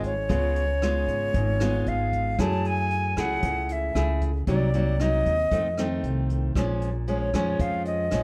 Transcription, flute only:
0, 0, Header, 1, 2, 480
1, 0, Start_track
1, 0, Key_signature, -5, "major"
1, 0, Tempo, 520833
1, 280, Time_signature, 4, 2, 24, 8
1, 7586, End_track
2, 0, Start_track
2, 0, Title_t, "Flute"
2, 0, Program_c, 0, 73
2, 55, Note_on_c, 0, 73, 88
2, 1735, Note_on_c, 0, 77, 76
2, 1749, Note_off_c, 0, 73, 0
2, 2210, Note_on_c, 0, 81, 86
2, 2224, Note_off_c, 0, 77, 0
2, 2459, Note_on_c, 0, 80, 96
2, 2473, Note_off_c, 0, 81, 0
2, 2949, Note_on_c, 0, 78, 85
2, 2963, Note_off_c, 0, 80, 0
2, 3431, Note_on_c, 0, 76, 71
2, 3445, Note_off_c, 0, 78, 0
2, 3896, Note_off_c, 0, 76, 0
2, 4140, Note_on_c, 0, 74, 82
2, 4619, Note_on_c, 0, 75, 93
2, 4632, Note_off_c, 0, 74, 0
2, 5569, Note_off_c, 0, 75, 0
2, 6537, Note_on_c, 0, 73, 70
2, 7009, Note_on_c, 0, 77, 82
2, 7023, Note_off_c, 0, 73, 0
2, 7240, Note_off_c, 0, 77, 0
2, 7246, Note_on_c, 0, 75, 78
2, 7586, Note_off_c, 0, 75, 0
2, 7586, End_track
0, 0, End_of_file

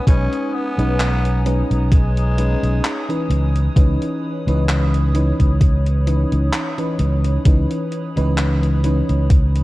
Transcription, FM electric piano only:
0, 0, Header, 1, 2, 480
1, 0, Start_track
1, 0, Tempo, 923077
1, 38, Time_signature, 4, 2, 24, 8
1, 5010, End_track
2, 0, Start_track
2, 0, Title_t, "FM electric piano"
2, 0, Program_c, 0, 5
2, 35, Note_on_c, 0, 56, 84
2, 38, Note_on_c, 0, 61, 76
2, 41, Note_on_c, 0, 63, 81
2, 43, Note_on_c, 0, 71, 96
2, 376, Note_off_c, 0, 56, 0
2, 377, Note_off_c, 0, 61, 0
2, 379, Note_off_c, 0, 63, 0
2, 380, Note_off_c, 0, 71, 0
2, 404, Note_on_c, 0, 56, 89
2, 407, Note_on_c, 0, 61, 77
2, 410, Note_on_c, 0, 63, 76
2, 412, Note_on_c, 0, 71, 93
2, 729, Note_off_c, 0, 56, 0
2, 731, Note_off_c, 0, 61, 0
2, 732, Note_off_c, 0, 63, 0
2, 733, Note_off_c, 0, 71, 0
2, 754, Note_on_c, 0, 56, 79
2, 756, Note_on_c, 0, 61, 73
2, 759, Note_on_c, 0, 63, 69
2, 762, Note_on_c, 0, 71, 91
2, 1209, Note_off_c, 0, 56, 0
2, 1211, Note_off_c, 0, 61, 0
2, 1212, Note_off_c, 0, 63, 0
2, 1214, Note_off_c, 0, 71, 0
2, 1234, Note_on_c, 0, 56, 77
2, 1236, Note_on_c, 0, 61, 69
2, 1239, Note_on_c, 0, 63, 69
2, 1241, Note_on_c, 0, 71, 81
2, 1575, Note_off_c, 0, 56, 0
2, 1576, Note_off_c, 0, 61, 0
2, 1578, Note_off_c, 0, 63, 0
2, 1579, Note_off_c, 0, 71, 0
2, 1604, Note_on_c, 0, 52, 73
2, 1606, Note_on_c, 0, 61, 66
2, 1608, Note_on_c, 0, 63, 64
2, 1611, Note_on_c, 0, 71, 84
2, 1929, Note_off_c, 0, 52, 0
2, 1930, Note_off_c, 0, 61, 0
2, 1931, Note_off_c, 0, 63, 0
2, 1933, Note_off_c, 0, 71, 0
2, 1953, Note_on_c, 0, 52, 83
2, 1956, Note_on_c, 0, 61, 80
2, 1960, Note_on_c, 0, 63, 79
2, 1961, Note_on_c, 0, 71, 96
2, 2295, Note_off_c, 0, 52, 0
2, 2296, Note_off_c, 0, 61, 0
2, 2298, Note_off_c, 0, 63, 0
2, 2299, Note_off_c, 0, 71, 0
2, 2325, Note_on_c, 0, 52, 91
2, 2328, Note_on_c, 0, 61, 83
2, 2330, Note_on_c, 0, 63, 85
2, 2333, Note_on_c, 0, 71, 100
2, 2650, Note_off_c, 0, 52, 0
2, 2651, Note_off_c, 0, 61, 0
2, 2652, Note_off_c, 0, 63, 0
2, 2654, Note_off_c, 0, 71, 0
2, 2673, Note_on_c, 0, 52, 80
2, 2676, Note_on_c, 0, 61, 72
2, 2679, Note_on_c, 0, 63, 73
2, 2681, Note_on_c, 0, 71, 88
2, 3129, Note_off_c, 0, 52, 0
2, 3131, Note_off_c, 0, 61, 0
2, 3132, Note_off_c, 0, 63, 0
2, 3133, Note_off_c, 0, 71, 0
2, 3153, Note_on_c, 0, 52, 72
2, 3156, Note_on_c, 0, 61, 68
2, 3159, Note_on_c, 0, 63, 67
2, 3161, Note_on_c, 0, 71, 83
2, 3495, Note_off_c, 0, 52, 0
2, 3496, Note_off_c, 0, 61, 0
2, 3498, Note_off_c, 0, 63, 0
2, 3499, Note_off_c, 0, 71, 0
2, 3523, Note_on_c, 0, 52, 74
2, 3526, Note_on_c, 0, 61, 67
2, 3529, Note_on_c, 0, 63, 69
2, 3531, Note_on_c, 0, 71, 82
2, 3849, Note_off_c, 0, 52, 0
2, 3850, Note_off_c, 0, 61, 0
2, 3852, Note_off_c, 0, 63, 0
2, 3853, Note_off_c, 0, 71, 0
2, 3873, Note_on_c, 0, 52, 88
2, 3876, Note_on_c, 0, 61, 77
2, 3879, Note_on_c, 0, 63, 77
2, 3881, Note_on_c, 0, 71, 96
2, 4215, Note_off_c, 0, 52, 0
2, 4216, Note_off_c, 0, 61, 0
2, 4218, Note_off_c, 0, 63, 0
2, 4219, Note_off_c, 0, 71, 0
2, 4243, Note_on_c, 0, 52, 89
2, 4245, Note_on_c, 0, 61, 79
2, 4248, Note_on_c, 0, 63, 82
2, 4251, Note_on_c, 0, 71, 99
2, 4569, Note_off_c, 0, 52, 0
2, 4570, Note_off_c, 0, 61, 0
2, 4571, Note_off_c, 0, 63, 0
2, 4573, Note_off_c, 0, 71, 0
2, 4595, Note_on_c, 0, 52, 81
2, 4597, Note_on_c, 0, 61, 73
2, 4600, Note_on_c, 0, 63, 76
2, 4603, Note_on_c, 0, 71, 87
2, 5010, Note_off_c, 0, 52, 0
2, 5010, Note_off_c, 0, 61, 0
2, 5010, Note_off_c, 0, 63, 0
2, 5010, Note_off_c, 0, 71, 0
2, 5010, End_track
0, 0, End_of_file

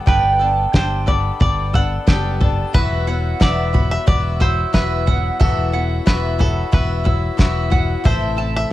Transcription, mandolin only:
0, 0, Header, 1, 2, 480
1, 0, Start_track
1, 0, Tempo, 665188
1, 52, Time_signature, 4, 2, 24, 8
1, 6295, End_track
2, 0, Start_track
2, 0, Title_t, "Mandolin"
2, 0, Program_c, 0, 25
2, 0, Note_on_c, 0, 81, 68
2, 0, Note_on_c, 0, 88, 74
2, 53, Note_on_c, 0, 79, 78
2, 287, Note_off_c, 0, 81, 0
2, 293, Note_off_c, 0, 88, 0
2, 296, Note_on_c, 0, 81, 65
2, 532, Note_on_c, 0, 67, 69
2, 770, Note_off_c, 0, 81, 0
2, 773, Note_on_c, 0, 83, 69
2, 1009, Note_off_c, 0, 79, 0
2, 1012, Note_on_c, 0, 74, 66
2, 1255, Note_on_c, 0, 88, 70
2, 1487, Note_off_c, 0, 67, 0
2, 1496, Note_on_c, 0, 67, 76
2, 1733, Note_off_c, 0, 83, 0
2, 1736, Note_on_c, 0, 81, 62
2, 1976, Note_off_c, 0, 88, 0
2, 1977, Note_off_c, 0, 74, 0
2, 1978, Note_off_c, 0, 67, 0
2, 1978, Note_off_c, 0, 81, 0
2, 1979, Note_on_c, 0, 76, 78
2, 2219, Note_on_c, 0, 78, 70
2, 2450, Note_off_c, 0, 76, 0
2, 2459, Note_on_c, 0, 76, 72
2, 2699, Note_on_c, 0, 83, 71
2, 2928, Note_off_c, 0, 76, 0
2, 2937, Note_on_c, 0, 76, 74
2, 3174, Note_off_c, 0, 83, 0
2, 3177, Note_on_c, 0, 88, 71
2, 3180, Note_off_c, 0, 78, 0
2, 3410, Note_off_c, 0, 76, 0
2, 3418, Note_on_c, 0, 76, 77
2, 3660, Note_on_c, 0, 78, 70
2, 3885, Note_off_c, 0, 76, 0
2, 3894, Note_on_c, 0, 76, 76
2, 4129, Note_off_c, 0, 78, 0
2, 4137, Note_off_c, 0, 88, 0
2, 4138, Note_on_c, 0, 78, 63
2, 4369, Note_off_c, 0, 76, 0
2, 4378, Note_on_c, 0, 76, 71
2, 4613, Note_on_c, 0, 83, 73
2, 4843, Note_off_c, 0, 76, 0
2, 4852, Note_on_c, 0, 76, 71
2, 5086, Note_off_c, 0, 83, 0
2, 5089, Note_on_c, 0, 88, 69
2, 5095, Note_off_c, 0, 78, 0
2, 5322, Note_off_c, 0, 76, 0
2, 5331, Note_on_c, 0, 76, 72
2, 5568, Note_on_c, 0, 78, 65
2, 5801, Note_off_c, 0, 76, 0
2, 5808, Note_off_c, 0, 88, 0
2, 5809, Note_off_c, 0, 78, 0
2, 5810, Note_on_c, 0, 76, 73
2, 6047, Note_on_c, 0, 81, 64
2, 6281, Note_off_c, 0, 76, 0
2, 6295, Note_off_c, 0, 81, 0
2, 6295, End_track
0, 0, End_of_file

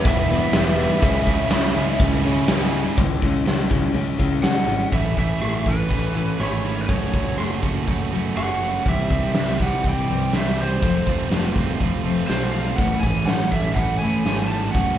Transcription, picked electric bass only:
0, 0, Header, 1, 2, 480
1, 0, Start_track
1, 0, Key_signature, 3, "major"
1, 0, Tempo, 490196
1, 1009, Time_signature, 4, 2, 24, 8
1, 14670, End_track
2, 0, Start_track
2, 0, Title_t, "Picked electric bass"
2, 0, Program_c, 0, 34
2, 50, Note_on_c, 0, 28, 90
2, 376, Note_off_c, 0, 28, 0
2, 535, Note_on_c, 0, 28, 89
2, 858, Note_off_c, 0, 28, 0
2, 1003, Note_on_c, 0, 37, 95
2, 1329, Note_off_c, 0, 37, 0
2, 1485, Note_on_c, 0, 37, 96
2, 1648, Note_off_c, 0, 37, 0
2, 1726, Note_on_c, 0, 37, 77
2, 1888, Note_off_c, 0, 37, 0
2, 1954, Note_on_c, 0, 37, 92
2, 2282, Note_off_c, 0, 37, 0
2, 2438, Note_on_c, 0, 37, 85
2, 2763, Note_off_c, 0, 37, 0
2, 2911, Note_on_c, 0, 37, 87
2, 3073, Note_off_c, 0, 37, 0
2, 3153, Note_on_c, 0, 37, 76
2, 3314, Note_off_c, 0, 37, 0
2, 3381, Note_on_c, 0, 37, 82
2, 3545, Note_off_c, 0, 37, 0
2, 3633, Note_on_c, 0, 37, 73
2, 3793, Note_off_c, 0, 37, 0
2, 3865, Note_on_c, 0, 37, 88
2, 4027, Note_off_c, 0, 37, 0
2, 4108, Note_on_c, 0, 37, 93
2, 4270, Note_off_c, 0, 37, 0
2, 4346, Note_on_c, 0, 37, 89
2, 4508, Note_off_c, 0, 37, 0
2, 4578, Note_on_c, 0, 32, 85
2, 4743, Note_off_c, 0, 32, 0
2, 4822, Note_on_c, 0, 33, 86
2, 5037, Note_off_c, 0, 33, 0
2, 5060, Note_on_c, 0, 33, 70
2, 5276, Note_off_c, 0, 33, 0
2, 5311, Note_on_c, 0, 33, 86
2, 5523, Note_off_c, 0, 33, 0
2, 5540, Note_on_c, 0, 33, 70
2, 5757, Note_off_c, 0, 33, 0
2, 5779, Note_on_c, 0, 33, 77
2, 6208, Note_off_c, 0, 33, 0
2, 6264, Note_on_c, 0, 32, 76
2, 6744, Note_off_c, 0, 32, 0
2, 6744, Note_on_c, 0, 30, 77
2, 6959, Note_off_c, 0, 30, 0
2, 6986, Note_on_c, 0, 30, 73
2, 7201, Note_off_c, 0, 30, 0
2, 7237, Note_on_c, 0, 30, 78
2, 7448, Note_off_c, 0, 30, 0
2, 7470, Note_on_c, 0, 30, 66
2, 7684, Note_off_c, 0, 30, 0
2, 7713, Note_on_c, 0, 30, 87
2, 8138, Note_off_c, 0, 30, 0
2, 8196, Note_on_c, 0, 30, 75
2, 8620, Note_off_c, 0, 30, 0
2, 8674, Note_on_c, 0, 36, 86
2, 8887, Note_off_c, 0, 36, 0
2, 8912, Note_on_c, 0, 36, 76
2, 9126, Note_off_c, 0, 36, 0
2, 9161, Note_on_c, 0, 36, 81
2, 9372, Note_off_c, 0, 36, 0
2, 9396, Note_on_c, 0, 36, 65
2, 9609, Note_off_c, 0, 36, 0
2, 9635, Note_on_c, 0, 36, 82
2, 10061, Note_off_c, 0, 36, 0
2, 10116, Note_on_c, 0, 36, 84
2, 10542, Note_off_c, 0, 36, 0
2, 10596, Note_on_c, 0, 29, 83
2, 10810, Note_off_c, 0, 29, 0
2, 10839, Note_on_c, 0, 29, 81
2, 11052, Note_off_c, 0, 29, 0
2, 11080, Note_on_c, 0, 29, 84
2, 11293, Note_off_c, 0, 29, 0
2, 11315, Note_on_c, 0, 29, 70
2, 11530, Note_off_c, 0, 29, 0
2, 11559, Note_on_c, 0, 29, 82
2, 11985, Note_off_c, 0, 29, 0
2, 12041, Note_on_c, 0, 35, 77
2, 12467, Note_off_c, 0, 35, 0
2, 12512, Note_on_c, 0, 33, 88
2, 12730, Note_off_c, 0, 33, 0
2, 12758, Note_on_c, 0, 33, 75
2, 12974, Note_off_c, 0, 33, 0
2, 13000, Note_on_c, 0, 33, 83
2, 13215, Note_off_c, 0, 33, 0
2, 13241, Note_on_c, 0, 33, 68
2, 13455, Note_off_c, 0, 33, 0
2, 13476, Note_on_c, 0, 33, 79
2, 13905, Note_off_c, 0, 33, 0
2, 13954, Note_on_c, 0, 32, 76
2, 14384, Note_off_c, 0, 32, 0
2, 14435, Note_on_c, 0, 30, 85
2, 14653, Note_off_c, 0, 30, 0
2, 14670, End_track
0, 0, End_of_file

